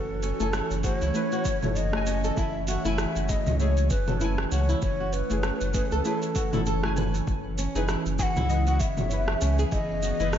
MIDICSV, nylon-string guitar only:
0, 0, Header, 1, 2, 480
1, 0, Start_track
1, 0, Tempo, 612245
1, 1860, Time_signature, 4, 2, 24, 8
1, 8138, End_track
2, 0, Start_track
2, 0, Title_t, "Nylon-string guitar"
2, 0, Program_c, 0, 24
2, 180, Note_on_c, 0, 61, 80
2, 304, Note_off_c, 0, 61, 0
2, 315, Note_on_c, 0, 69, 105
2, 414, Note_off_c, 0, 69, 0
2, 420, Note_on_c, 0, 64, 82
2, 551, Note_off_c, 0, 64, 0
2, 658, Note_on_c, 0, 66, 73
2, 783, Note_off_c, 0, 66, 0
2, 797, Note_on_c, 0, 64, 102
2, 895, Note_off_c, 0, 64, 0
2, 1037, Note_on_c, 0, 66, 82
2, 1135, Note_off_c, 0, 66, 0
2, 1620, Note_on_c, 0, 61, 78
2, 1744, Note_off_c, 0, 61, 0
2, 1758, Note_on_c, 0, 69, 90
2, 1856, Note_off_c, 0, 69, 0
2, 1860, Note_on_c, 0, 64, 86
2, 1990, Note_off_c, 0, 64, 0
2, 2102, Note_on_c, 0, 66, 73
2, 2224, Note_off_c, 0, 66, 0
2, 2237, Note_on_c, 0, 64, 110
2, 2335, Note_off_c, 0, 64, 0
2, 2478, Note_on_c, 0, 66, 75
2, 2575, Note_off_c, 0, 66, 0
2, 3062, Note_on_c, 0, 61, 75
2, 3184, Note_off_c, 0, 61, 0
2, 3196, Note_on_c, 0, 69, 96
2, 3294, Note_off_c, 0, 69, 0
2, 3300, Note_on_c, 0, 64, 72
2, 3431, Note_off_c, 0, 64, 0
2, 3542, Note_on_c, 0, 66, 75
2, 3664, Note_off_c, 0, 66, 0
2, 3677, Note_on_c, 0, 64, 92
2, 3775, Note_off_c, 0, 64, 0
2, 3922, Note_on_c, 0, 66, 76
2, 4017, Note_off_c, 0, 66, 0
2, 4504, Note_on_c, 0, 61, 72
2, 4625, Note_off_c, 0, 61, 0
2, 4642, Note_on_c, 0, 69, 103
2, 4738, Note_off_c, 0, 69, 0
2, 4745, Note_on_c, 0, 64, 85
2, 4873, Note_off_c, 0, 64, 0
2, 4983, Note_on_c, 0, 66, 72
2, 5105, Note_off_c, 0, 66, 0
2, 5121, Note_on_c, 0, 64, 97
2, 5178, Note_off_c, 0, 64, 0
2, 5227, Note_on_c, 0, 69, 93
2, 5347, Note_off_c, 0, 69, 0
2, 5364, Note_on_c, 0, 64, 76
2, 5453, Note_off_c, 0, 64, 0
2, 5467, Note_on_c, 0, 71, 95
2, 5594, Note_off_c, 0, 71, 0
2, 5946, Note_on_c, 0, 61, 78
2, 6066, Note_off_c, 0, 61, 0
2, 6079, Note_on_c, 0, 68, 103
2, 6176, Note_off_c, 0, 68, 0
2, 6182, Note_on_c, 0, 64, 78
2, 6311, Note_off_c, 0, 64, 0
2, 6423, Note_on_c, 0, 66, 80
2, 6545, Note_off_c, 0, 66, 0
2, 6560, Note_on_c, 0, 64, 106
2, 6657, Note_off_c, 0, 64, 0
2, 6800, Note_on_c, 0, 66, 78
2, 6896, Note_off_c, 0, 66, 0
2, 7381, Note_on_c, 0, 61, 77
2, 7504, Note_off_c, 0, 61, 0
2, 7518, Note_on_c, 0, 68, 95
2, 7615, Note_off_c, 0, 68, 0
2, 7620, Note_on_c, 0, 64, 77
2, 7751, Note_off_c, 0, 64, 0
2, 7862, Note_on_c, 0, 66, 76
2, 7985, Note_off_c, 0, 66, 0
2, 7997, Note_on_c, 0, 64, 109
2, 8095, Note_off_c, 0, 64, 0
2, 8138, End_track
0, 0, End_of_file